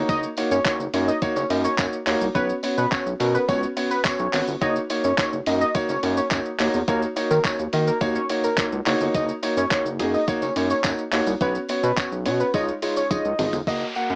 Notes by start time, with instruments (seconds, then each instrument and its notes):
Already playing: grand piano A#3 D#4 F#4 C#5
0.09 analog synth bass F#1, analog synth lead D#5, kick, closed hi-hat, tambourine, shaker
0.23 shaker
0.37 grand piano A#3 D#4 F#4 C#5, open hi-hat, tambourine, shaker
0.51 analog synth bass F#2, analog synth lead C#5, tambourine, shaker
0.65 grand piano A#3 D#4 F#4 C#5, analog synth lead C#5, kick, clap, closed hi-hat, tambourine, shaker
0.80 analog synth bass F#1, shaker
0.94 analog synth bass F#2, grand piano A#3 D#4 F#4 C#5, open hi-hat, tambourine, shaker
1.08 analog synth lead D#5, shaker
1.22 grand piano A#3 D#4 F#4 C#5, kick, closed hi-hat, tambourine, shaker
1.36 analog synth bass F#1, analog synth lead C#5, tambourine, shaker
1.50 analog synth bass F#2, grand piano A#3 D#4 F#4 D#5, open hi-hat, tambourine, shaker
1.64 analog synth lead C#5, shaker
1.78 analog synth bass F#2, grand piano A#3 D#4 F#4 C#5, kick, clap, closed hi-hat, tambourine, shaker
1.93 shaker
2.06 analog synth bass D#2, grand piano A#3 D#4 F#4 C#5, clap, open hi-hat, tambourine, shaker
2.21 analog synth bass C2, shaker
2.35 analog synth bass B1, grand piano B3 C#4 F#4 C#5, analog synth lead B4, kick, closed hi-hat, tambourine, shaker
2.49 shaker
2.63 grand piano B3 C#4 F#4 C#5, open hi-hat, tambourine, shaker
2.78 analog synth bass B2, analog synth lead B4, shaker
2.91 grand piano B3 C#4 F#4 C#5, analog synth lead C#5, kick, clap, closed hi-hat, tambourine, shaker
3.06 analog synth bass B1, shaker
3.20 analog synth bass B2, grand piano B3 C#4 F#4 A#4, open hi-hat, tambourine, shaker
3.34 analog synth lead B4, shaker
3.48 analog synth bass C#2, grand piano B3 C#4 F#4 C#5, analog synth lead C#5, kick, closed hi-hat, tambourine, shaker
3.63 shaker
3.77 grand piano B3 C#4 F#4 C#5, open hi-hat, tambourine, shaker
3.91 analog synth lead B4, tambourine, shaker
4.04 grand piano B3 C#4 F#4 C#5, analog synth lead C#5, kick, clap, closed hi-hat, tambourine, shaker
4.19 analog synth bass B1, shaker
4.33 analog synth bass G#1, grand piano B3 C#4 F#4 C#5, clap, open hi-hat, tambourine, shaker
4.47 analog synth bass G1, shaker
4.61 analog synth bass F#1, grand piano A#3 D#4 F#4 C#5, analog synth lead D#5, kick, closed hi-hat, tambourine, shaker
4.76 shaker
4.90 grand piano A#3 D#4 F#4 C#5, open hi-hat, tambourine, shaker
5.04 analog synth bass F#2, analog synth lead C#5, shaker
5.18 grand piano A#3 D#4 F#4 C#5, analog synth lead C#5, kick, clap, closed hi-hat, tambourine, shaker
5.33 analog synth bass F#1, shaker
5.46 analog synth bass F#2, grand piano A#3 D#4 F#4 D#5, open hi-hat, tambourine, shaker
5.61 analog synth lead D#5, shaker
5.75 grand piano A#3 D#4 F#4 C#5, kick, closed hi-hat, tambourine, shaker
5.89 analog synth bass F#1, analog synth lead C#5, tambourine, shaker
6.03 analog synth bass F#2, grand piano A#3 D#4 F#4 C#5, open hi-hat, tambourine, shaker
6.17 analog synth lead C#5, shaker
6.31 analog synth bass F#2, grand piano A#3 D#4 F#4 C#5, kick, clap, closed hi-hat, tambourine, shaker
6.45 shaker
6.60 analog synth bass D#2, grand piano A#3 D#4 F#4 C#5, clap, open hi-hat, tambourine, shaker
6.74 analog synth bass E2, shaker
6.88 analog synth bass D#2, grand piano A#3 D#4 F#4 C#5, analog synth lead A#4, kick, closed hi-hat, tambourine, shaker
7.02 shaker
7.16 grand piano A#3 D#4 F#4 C#5, open hi-hat, tambourine, shaker
7.30 analog synth bass D#3, analog synth lead A#4, tambourine, shaker
7.44 grand piano A#3 D#4 F#4 C#5, analog synth lead C#5, kick, clap, closed hi-hat, tambourine, shaker
7.59 analog synth bass D#2, shaker
7.73 analog synth bass D#3, grand piano A#3 D#4 F#4 D#5, open hi-hat, tambourine, shaker
7.87 analog synth lead A#4, shaker
8.01 analog synth bass D#2, grand piano A#3 D#4 F#4 C#5, kick, closed hi-hat, tambourine, shaker
8.15 analog synth lead C#5, shaker
8.29 grand piano A#3 D#4 F#4 C#5, open hi-hat, tambourine, shaker
8.44 analog synth lead A#4, tambourine, shaker
8.58 grand piano A#3 D#4 F#4 C#5, kick, clap, closed hi-hat, tambourine, shaker
8.72 analog synth bass C#2, shaker
8.86 analog synth bass F#1, grand piano A#3 D#4 F#4 C#5, clap, open hi-hat, tambourine, shaker
9.00 analog synth bass G1, shaker
9.14 analog synth bass F#1, analog synth lead D#5, kick, closed hi-hat, tambourine, shaker
9.28 shaker
9.42 grand piano A#3 D#4 F#4 C#5, open hi-hat, tambourine, shaker
9.57 analog synth bass F#2, analog synth lead C#5, shaker
9.71 grand piano A#3 D#4 F#4 C#5, analog synth lead C#5, kick, clap, closed hi-hat, tambourine, shaker
9.85 analog synth bass F#1, shaker
9.99 analog synth bass F#2, grand piano A#3 D#4 F#4 G#4, open hi-hat, tambourine, shaker
10.14 analog synth lead D#5, shaker
10.28 grand piano A#3 D#4 F#4 C#5, kick, closed hi-hat, tambourine, shaker
10.42 analog synth bass F#1, analog synth lead C#5, tambourine, shaker
10.56 analog synth bass F#2, grand piano A#3 D#4 F#4 C#5, open hi-hat, tambourine, shaker
10.70 analog synth lead C#5, tambourine, shaker
10.84 analog synth bass F#2, grand piano A#3 D#4 F#4 C#5, kick, clap, closed hi-hat, tambourine, shaker
10.98 shaker
11.12 analog synth bass D#2, grand piano A#3 D#4 F#4 C#5, clap, open hi-hat, tambourine, shaker
11.26 analog synth bass C2, tambourine, shaker
11.41 analog synth bass B1, grand piano B3 C#4 F#4 C#5, analog synth lead B4, kick, closed hi-hat, tambourine, shaker
11.55 shaker
11.69 grand piano B3 C#4 F#4 C#5, open hi-hat, tambourine, shaker
11.83 analog synth bass B2, analog synth lead B4, shaker
11.98 grand piano B3 C#4 F#4 C#5, analog synth lead C#5, kick, clap, closed hi-hat, tambourine, shaker
12.12 analog synth bass B1, shaker
12.26 analog synth bass B2, grand piano B3 C#4 F#4 C#5, open hi-hat, tambourine, shaker
12.40 analog synth lead B4, shaker
12.54 analog synth bass C#2, grand piano G#3 D#4 F4 C#5, analog synth lead D#5, kick, closed hi-hat, tambourine, shaker
12.68 shaker
12.82 grand piano G#3 D#4 F4 C#5, open hi-hat, tambourine, shaker
12.97 analog synth lead C#5, tambourine, shaker
13.10 grand piano G#3 D#4 F4 C#5, analog synth lead D#5, kick, closed hi-hat, high tom, tambourine, shaker
13.25 analog synth bass C#2, shaker
13.39 analog synth bass G#1, grand piano G#3 D#4 F4 D#5, mid tom, open hi-hat, tambourine, shaker
13.53 analog synth bass G1, floor tom, tambourine, shaker
13.67 analog synth bass F#1, grand piano A#3 F#4 D#5, kick, tambourine, downlifter
13.95 grand piano A#3 F#4 F#5, tambourine
14.10 analog synth bass F#2, tambourine